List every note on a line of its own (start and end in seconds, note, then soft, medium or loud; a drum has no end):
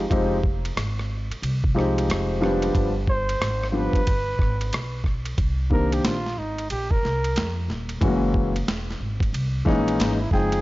0.10 0.74 F1 medium
0.10 0.36 F3 medium
0.10 0.36 G#3 medium
0.10 0.37 C4 medium
0.10 0.37 D#4 medium
0.10 0.37 G4 medium
0.10 kick loud
0.10 ride medium
0.43 kick medium
0.65 ride medium
0.77 1.28 G#1 medium
0.77 cross-stick loud
0.77 hi-hat pedal soft
0.77 ride medium
0.99 cross-stick soft
1.30 muted upright bass stroke soft
1.30 ride medium
1.42 2.05 C2 medium
1.42 ride medium
1.64 kick medium
1.75 2.39 F3 medium
1.75 2.69 G#3 medium
1.75 2.69 C4 medium
1.75 2.70 D#4 medium
1.75 2.41 G4 medium
1.79 cross-stick soft
1.98 ride medium
2.09 2.71 F1 loud
2.09 cross-stick loud
2.09 hi-hat pedal medium
2.09 ride medium
2.41 2.91 F3 medium
2.41 2.91 G3 medium
2.41 2.91 B3 medium
2.41 2.91 D4 medium
2.41 2.91 G4 medium
2.41 cross-stick soft
2.62 ride medium
2.75 3.37 G1 medium
2.75 kick loud
2.75 ride medium
3.07 3.65 C5 loud
3.07 kick medium
3.29 ride medium
3.41 3.92 G#1 medium
3.41 cross-stick loud
3.41 hi-hat pedal soft
3.41 ride medium
3.63 cross-stick soft
3.69 3.98 F3 medium
3.69 3.99 G3 medium
3.69 3.99 B3 medium
3.69 3.99 D4 medium
3.69 3.77 C5 medium
3.74 3.99 G4 medium
3.74 5.06 B4 loud
3.93 kick medium
3.93 ride soft
4.07 4.38 G1 medium
4.07 kick medium
4.07 ride medium
4.39 4.71 G#1 medium
4.39 kick medium
4.39 cross-stick soft
4.61 ride medium
4.73 5.35 B1 medium
4.73 cross-stick loud
4.73 hi-hat pedal medium
4.73 ride medium
5.04 kick medium
5.04 cross-stick soft
5.25 ride medium
5.38 6.01 C2 medium
5.38 kick loud
5.38 ride medium
5.70 6.12 D#3 medium
5.70 6.12 A#3 medium
5.70 6.12 C4 medium
5.70 6.13 D4 medium
5.70 6.13 G4 medium
5.70 5.95 A#4 medium
5.70 kick medium
5.92 6.07 G4 medium
5.92 ride medium
6.04 6.36 A#1 medium
6.04 6.40 F4 medium
6.04 snare loud
6.04 hi-hat pedal soft
6.04 ride medium
6.26 snare soft
6.37 6.69 G#1 medium
6.37 6.70 D#4 medium
6.58 ride soft
6.70 7.02 A#1 medium
6.70 6.93 G4 medium
6.70 ride medium
6.91 7.57 A#4 loud
6.91 kick medium
7.03 7.34 C2 medium
7.03 snare soft
7.24 ride medium
7.36 7.67 F2 loud
7.36 snare loud
7.36 hi-hat pedal soft
7.36 ride medium
7.68 8.00 D#1 medium
7.68 snare soft
7.89 ride medium
8.01 8.64 F#1 loud
8.01 8.51 E3 medium
8.01 8.51 G#3 medium
8.01 8.10 A3 medium
8.01 8.52 C#4 medium
8.01 8.52 F#4 medium
8.01 kick loud
8.01 ride medium
8.08 8.54 A#3 medium
8.34 kick medium
8.56 ride medium
8.67 8.99 E1 medium
8.67 snare loud
8.67 hi-hat pedal soft
8.67 ride medium
8.90 snare soft
9.00 9.32 G#1 medium
9.20 kick medium
9.20 ride medium
9.33 9.65 C2 medium
9.33 ride medium
9.65 9.98 A#1 medium
9.65 10.15 E3 medium
9.65 10.16 G#3 medium
9.65 10.16 A#3 medium
9.65 10.16 C#4 medium
9.65 10.16 D#4 medium
9.65 kick medium
9.65 snare soft
9.88 ride medium
9.99 10.30 G#1 medium
9.99 10.22 D#4 medium
9.99 snare loud
9.99 hi-hat pedal medium
9.99 ride medium
10.20 10.32 E4 medium
10.31 10.61 F#1 medium
10.31 10.61 F3 medium
10.31 10.61 G#3 medium
10.31 10.61 C4 medium
10.31 10.61 D#4 medium
10.31 10.61 G#4 medium
10.31 10.61 G5 medium
10.31 kick medium
10.31 snare soft
10.52 ride medium